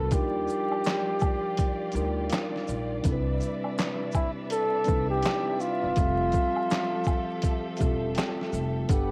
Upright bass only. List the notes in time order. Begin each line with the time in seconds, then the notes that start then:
Already playing: C2
0.12 D#2
1.95 D2
2.69 A#1
3.05 C2
4.88 C2
5.84 F#1
5.97 F1
7.81 E1
8.53 F1
8.90 G1